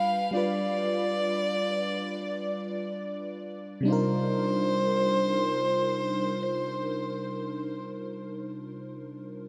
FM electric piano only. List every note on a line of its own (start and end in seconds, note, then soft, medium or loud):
0.00 0.28 G3 medium
0.00 0.29 D4 medium
0.00 0.30 F4 medium
0.00 0.31 B4 medium
0.31 3.81 G3 medium
0.31 3.82 D4 medium
0.31 3.83 F4 medium
0.37 3.84 B4 medium
3.81 7.76 C3 medium
3.81 7.78 G3 medium
3.85 7.81 D4 medium
3.85 7.83 D#4 medium
3.90 7.86 F4 medium
3.90 7.88 A#4 loud